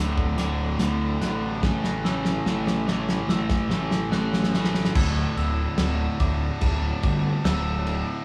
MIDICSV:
0, 0, Header, 1, 7, 480
1, 0, Start_track
1, 0, Tempo, 831601
1, 943, Time_signature, 4, 2, 24, 8
1, 4760, End_track
2, 0, Start_track
2, 0, Title_t, "Glockenspiel"
2, 0, Program_c, 0, 9
2, 0, Note_on_c, 0, 88, 71
2, 219, Note_on_c, 0, 86, 79
2, 223, Note_off_c, 0, 88, 0
2, 701, Note_off_c, 0, 86, 0
2, 701, Note_on_c, 0, 90, 74
2, 1178, Note_on_c, 0, 88, 82
2, 1182, Note_off_c, 0, 90, 0
2, 1660, Note_off_c, 0, 88, 0
2, 1661, Note_on_c, 0, 86, 66
2, 1900, Note_on_c, 0, 88, 84
2, 1901, Note_off_c, 0, 86, 0
2, 2379, Note_on_c, 0, 90, 86
2, 2381, Note_off_c, 0, 88, 0
2, 2860, Note_off_c, 0, 90, 0
2, 3102, Note_on_c, 0, 88, 81
2, 3578, Note_on_c, 0, 86, 80
2, 3581, Note_off_c, 0, 88, 0
2, 4054, Note_off_c, 0, 86, 0
2, 4061, Note_on_c, 0, 86, 79
2, 4297, Note_on_c, 0, 88, 100
2, 4301, Note_off_c, 0, 86, 0
2, 4760, Note_off_c, 0, 88, 0
2, 4760, End_track
3, 0, Start_track
3, 0, Title_t, "Clean electric guitar"
3, 0, Program_c, 1, 27
3, 0, Note_on_c, 1, 38, 74
3, 0, Note_on_c, 1, 45, 69
3, 0, Note_on_c, 1, 57, 73
3, 224, Note_off_c, 1, 38, 0
3, 226, Note_on_c, 1, 50, 70
3, 464, Note_on_c, 1, 64, 72
3, 704, Note_off_c, 1, 57, 0
3, 707, Note_on_c, 1, 57, 76
3, 940, Note_off_c, 1, 45, 0
3, 944, Note_off_c, 1, 50, 0
3, 947, Note_on_c, 1, 45, 73
3, 1183, Note_on_c, 1, 52, 67
3, 1423, Note_off_c, 1, 57, 0
3, 1423, Note_on_c, 1, 57, 70
3, 1665, Note_off_c, 1, 64, 0
3, 1665, Note_on_c, 1, 64, 77
3, 1897, Note_off_c, 1, 57, 0
3, 1903, Note_on_c, 1, 57, 67
3, 2139, Note_on_c, 1, 61, 75
3, 2144, Note_off_c, 1, 45, 0
3, 2378, Note_on_c, 1, 69, 76
3, 2382, Note_off_c, 1, 52, 0
3, 2617, Note_off_c, 1, 64, 0
3, 2624, Note_on_c, 1, 64, 77
3, 2860, Note_off_c, 1, 61, 0
3, 2860, Note_off_c, 1, 69, 0
3, 2862, Note_off_c, 1, 57, 0
3, 2863, Note_off_c, 1, 64, 0
3, 4760, End_track
4, 0, Start_track
4, 0, Title_t, "Pedal steel guitar"
4, 0, Program_c, 2, 26
4, 0, Note_on_c, 2, 50, 64
4, 0, Note_on_c, 2, 52, 46
4, 0, Note_on_c, 2, 57, 54
4, 0, Note_on_c, 2, 64, 58
4, 0, Note_on_c, 2, 69, 71
4, 919, Note_off_c, 2, 50, 0
4, 932, Note_off_c, 2, 52, 0
4, 935, Note_on_c, 2, 49, 64
4, 2836, Note_off_c, 2, 69, 0
4, 2837, Note_off_c, 2, 57, 0
4, 2838, Note_off_c, 2, 49, 0
4, 2839, Note_off_c, 2, 64, 0
4, 2859, Note_on_c, 2, 57, 62
4, 2861, Note_on_c, 2, 64, 62
4, 2863, Note_on_c, 2, 50, 69
4, 2863, Note_on_c, 2, 52, 59
4, 2866, Note_on_c, 2, 69, 79
4, 4760, Note_off_c, 2, 50, 0
4, 4760, Note_off_c, 2, 52, 0
4, 4760, Note_off_c, 2, 57, 0
4, 4760, Note_off_c, 2, 64, 0
4, 4760, Note_off_c, 2, 69, 0
4, 4760, End_track
5, 0, Start_track
5, 0, Title_t, "Distorted electric guitar"
5, 0, Program_c, 3, 30
5, 0, Note_on_c, 3, 38, 84
5, 0, Note_on_c, 3, 45, 88
5, 0, Note_on_c, 3, 50, 96
5, 208, Note_off_c, 3, 38, 0
5, 212, Note_off_c, 3, 45, 0
5, 213, Note_off_c, 3, 50, 0
5, 215, Note_on_c, 3, 38, 89
5, 219, Note_on_c, 3, 45, 93
5, 220, Note_on_c, 3, 50, 107
5, 450, Note_off_c, 3, 38, 0
5, 457, Note_off_c, 3, 45, 0
5, 457, Note_off_c, 3, 50, 0
5, 457, Note_on_c, 3, 38, 75
5, 464, Note_on_c, 3, 45, 89
5, 464, Note_on_c, 3, 50, 88
5, 690, Note_off_c, 3, 38, 0
5, 691, Note_off_c, 3, 45, 0
5, 693, Note_off_c, 3, 50, 0
5, 697, Note_on_c, 3, 38, 84
5, 698, Note_on_c, 3, 45, 85
5, 700, Note_on_c, 3, 50, 95
5, 925, Note_off_c, 3, 38, 0
5, 926, Note_off_c, 3, 45, 0
5, 927, Note_off_c, 3, 50, 0
5, 942, Note_on_c, 3, 45, 82
5, 945, Note_on_c, 3, 52, 100
5, 947, Note_on_c, 3, 57, 99
5, 1176, Note_off_c, 3, 45, 0
5, 1180, Note_off_c, 3, 52, 0
5, 1180, Note_off_c, 3, 57, 0
5, 1183, Note_on_c, 3, 45, 87
5, 1187, Note_on_c, 3, 52, 84
5, 1187, Note_on_c, 3, 57, 96
5, 1412, Note_off_c, 3, 45, 0
5, 1415, Note_off_c, 3, 52, 0
5, 1416, Note_off_c, 3, 57, 0
5, 1419, Note_on_c, 3, 45, 82
5, 1422, Note_on_c, 3, 52, 103
5, 1423, Note_on_c, 3, 57, 102
5, 1647, Note_off_c, 3, 45, 0
5, 1649, Note_off_c, 3, 52, 0
5, 1654, Note_off_c, 3, 57, 0
5, 1654, Note_on_c, 3, 45, 87
5, 1656, Note_on_c, 3, 52, 94
5, 1661, Note_on_c, 3, 57, 87
5, 1892, Note_off_c, 3, 45, 0
5, 1897, Note_off_c, 3, 52, 0
5, 1898, Note_off_c, 3, 57, 0
5, 1899, Note_on_c, 3, 45, 79
5, 1904, Note_on_c, 3, 52, 80
5, 1905, Note_on_c, 3, 57, 88
5, 2129, Note_off_c, 3, 45, 0
5, 2132, Note_off_c, 3, 52, 0
5, 2135, Note_off_c, 3, 57, 0
5, 2136, Note_on_c, 3, 45, 90
5, 2138, Note_on_c, 3, 52, 93
5, 2142, Note_on_c, 3, 57, 101
5, 2367, Note_off_c, 3, 45, 0
5, 2369, Note_off_c, 3, 52, 0
5, 2371, Note_off_c, 3, 57, 0
5, 2374, Note_on_c, 3, 45, 86
5, 2376, Note_on_c, 3, 52, 90
5, 2378, Note_on_c, 3, 57, 98
5, 2608, Note_off_c, 3, 45, 0
5, 2612, Note_off_c, 3, 52, 0
5, 2614, Note_on_c, 3, 45, 92
5, 2615, Note_off_c, 3, 57, 0
5, 2619, Note_on_c, 3, 52, 87
5, 2622, Note_on_c, 3, 57, 100
5, 2844, Note_off_c, 3, 45, 0
5, 2846, Note_off_c, 3, 52, 0
5, 2847, Note_off_c, 3, 57, 0
5, 2855, Note_on_c, 3, 38, 95
5, 2858, Note_on_c, 3, 45, 94
5, 2860, Note_on_c, 3, 50, 109
5, 3320, Note_off_c, 3, 38, 0
5, 3325, Note_off_c, 3, 45, 0
5, 3327, Note_on_c, 3, 38, 87
5, 3329, Note_off_c, 3, 50, 0
5, 3332, Note_on_c, 3, 45, 98
5, 3336, Note_on_c, 3, 50, 101
5, 3567, Note_off_c, 3, 38, 0
5, 3568, Note_off_c, 3, 45, 0
5, 3574, Note_off_c, 3, 50, 0
5, 3574, Note_on_c, 3, 38, 84
5, 3575, Note_on_c, 3, 45, 99
5, 3581, Note_on_c, 3, 50, 111
5, 3807, Note_off_c, 3, 38, 0
5, 3811, Note_off_c, 3, 45, 0
5, 3814, Note_off_c, 3, 50, 0
5, 3814, Note_on_c, 3, 38, 96
5, 3818, Note_on_c, 3, 45, 93
5, 3820, Note_on_c, 3, 50, 102
5, 4293, Note_off_c, 3, 38, 0
5, 4296, Note_off_c, 3, 45, 0
5, 4299, Note_off_c, 3, 50, 0
5, 4300, Note_on_c, 3, 38, 89
5, 4303, Note_on_c, 3, 45, 89
5, 4306, Note_on_c, 3, 50, 104
5, 4529, Note_off_c, 3, 38, 0
5, 4530, Note_off_c, 3, 45, 0
5, 4533, Note_off_c, 3, 50, 0
5, 4536, Note_on_c, 3, 38, 86
5, 4537, Note_on_c, 3, 45, 106
5, 4540, Note_on_c, 3, 50, 106
5, 4760, Note_off_c, 3, 38, 0
5, 4760, Note_off_c, 3, 45, 0
5, 4760, Note_off_c, 3, 50, 0
5, 4760, End_track
6, 0, Start_track
6, 0, Title_t, "Picked electric bass"
6, 0, Program_c, 4, 34
6, 0, Note_on_c, 4, 26, 89
6, 191, Note_off_c, 4, 26, 0
6, 216, Note_on_c, 4, 26, 90
6, 428, Note_off_c, 4, 26, 0
6, 456, Note_on_c, 4, 38, 80
6, 668, Note_off_c, 4, 38, 0
6, 699, Note_on_c, 4, 33, 87
6, 910, Note_off_c, 4, 33, 0
6, 937, Note_on_c, 4, 33, 100
6, 1359, Note_off_c, 4, 33, 0
6, 1421, Note_on_c, 4, 33, 95
6, 1841, Note_off_c, 4, 33, 0
6, 1894, Note_on_c, 4, 33, 91
6, 2107, Note_off_c, 4, 33, 0
6, 2133, Note_on_c, 4, 33, 92
6, 2346, Note_off_c, 4, 33, 0
6, 2374, Note_on_c, 4, 33, 82
6, 2796, Note_off_c, 4, 33, 0
6, 2859, Note_on_c, 4, 26, 100
6, 3021, Note_off_c, 4, 26, 0
6, 3096, Note_on_c, 4, 26, 92
6, 3260, Note_off_c, 4, 26, 0
6, 3332, Note_on_c, 4, 26, 100
6, 3497, Note_off_c, 4, 26, 0
6, 3577, Note_on_c, 4, 26, 88
6, 3740, Note_off_c, 4, 26, 0
6, 3820, Note_on_c, 4, 26, 90
6, 3982, Note_off_c, 4, 26, 0
6, 4060, Note_on_c, 4, 31, 93
6, 4222, Note_off_c, 4, 31, 0
6, 4298, Note_on_c, 4, 26, 94
6, 4623, Note_off_c, 4, 26, 0
6, 4760, End_track
7, 0, Start_track
7, 0, Title_t, "Drums"
7, 101, Note_on_c, 9, 36, 95
7, 159, Note_off_c, 9, 36, 0
7, 219, Note_on_c, 9, 38, 86
7, 219, Note_on_c, 9, 42, 68
7, 277, Note_off_c, 9, 38, 0
7, 277, Note_off_c, 9, 42, 0
7, 459, Note_on_c, 9, 38, 91
7, 459, Note_on_c, 9, 42, 90
7, 516, Note_off_c, 9, 38, 0
7, 516, Note_off_c, 9, 42, 0
7, 702, Note_on_c, 9, 38, 79
7, 702, Note_on_c, 9, 42, 59
7, 759, Note_off_c, 9, 38, 0
7, 759, Note_off_c, 9, 42, 0
7, 941, Note_on_c, 9, 36, 106
7, 941, Note_on_c, 9, 38, 103
7, 999, Note_off_c, 9, 36, 0
7, 999, Note_off_c, 9, 38, 0
7, 1063, Note_on_c, 9, 38, 87
7, 1120, Note_off_c, 9, 38, 0
7, 1183, Note_on_c, 9, 38, 104
7, 1241, Note_off_c, 9, 38, 0
7, 1300, Note_on_c, 9, 38, 102
7, 1357, Note_off_c, 9, 38, 0
7, 1422, Note_on_c, 9, 38, 105
7, 1479, Note_off_c, 9, 38, 0
7, 1543, Note_on_c, 9, 38, 103
7, 1600, Note_off_c, 9, 38, 0
7, 1661, Note_on_c, 9, 38, 94
7, 1719, Note_off_c, 9, 38, 0
7, 1781, Note_on_c, 9, 38, 104
7, 1839, Note_off_c, 9, 38, 0
7, 1900, Note_on_c, 9, 38, 116
7, 1957, Note_off_c, 9, 38, 0
7, 2017, Note_on_c, 9, 38, 114
7, 2019, Note_on_c, 9, 36, 98
7, 2075, Note_off_c, 9, 38, 0
7, 2076, Note_off_c, 9, 36, 0
7, 2139, Note_on_c, 9, 38, 97
7, 2197, Note_off_c, 9, 38, 0
7, 2258, Note_on_c, 9, 38, 113
7, 2316, Note_off_c, 9, 38, 0
7, 2379, Note_on_c, 9, 38, 109
7, 2436, Note_off_c, 9, 38, 0
7, 2502, Note_on_c, 9, 38, 98
7, 2559, Note_off_c, 9, 38, 0
7, 2561, Note_on_c, 9, 38, 104
7, 2618, Note_off_c, 9, 38, 0
7, 2620, Note_on_c, 9, 38, 102
7, 2678, Note_off_c, 9, 38, 0
7, 2680, Note_on_c, 9, 38, 99
7, 2737, Note_off_c, 9, 38, 0
7, 2738, Note_on_c, 9, 38, 109
7, 2796, Note_off_c, 9, 38, 0
7, 2798, Note_on_c, 9, 38, 113
7, 2856, Note_off_c, 9, 38, 0
7, 2859, Note_on_c, 9, 49, 119
7, 2859, Note_on_c, 9, 57, 91
7, 2860, Note_on_c, 9, 36, 114
7, 2917, Note_off_c, 9, 49, 0
7, 2917, Note_off_c, 9, 57, 0
7, 2918, Note_off_c, 9, 36, 0
7, 3101, Note_on_c, 9, 57, 64
7, 3159, Note_off_c, 9, 57, 0
7, 3335, Note_on_c, 9, 38, 117
7, 3335, Note_on_c, 9, 57, 86
7, 3393, Note_off_c, 9, 38, 0
7, 3393, Note_off_c, 9, 57, 0
7, 3577, Note_on_c, 9, 57, 62
7, 3580, Note_on_c, 9, 36, 86
7, 3635, Note_off_c, 9, 57, 0
7, 3638, Note_off_c, 9, 36, 0
7, 3816, Note_on_c, 9, 57, 94
7, 3820, Note_on_c, 9, 36, 93
7, 3874, Note_off_c, 9, 57, 0
7, 3877, Note_off_c, 9, 36, 0
7, 4058, Note_on_c, 9, 57, 65
7, 4061, Note_on_c, 9, 36, 95
7, 4116, Note_off_c, 9, 57, 0
7, 4118, Note_off_c, 9, 36, 0
7, 4301, Note_on_c, 9, 38, 115
7, 4301, Note_on_c, 9, 57, 98
7, 4359, Note_off_c, 9, 38, 0
7, 4359, Note_off_c, 9, 57, 0
7, 4540, Note_on_c, 9, 57, 63
7, 4598, Note_off_c, 9, 57, 0
7, 4760, End_track
0, 0, End_of_file